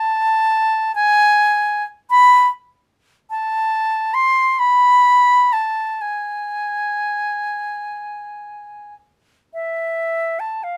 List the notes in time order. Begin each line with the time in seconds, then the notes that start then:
Already playing: A5
0.95 G#5
2.10 B5
3.30 A5
4.14 C6
4.59 B5
5.53 A5
6.01 G#5
9.54 E5
10.40 A5
10.64 F5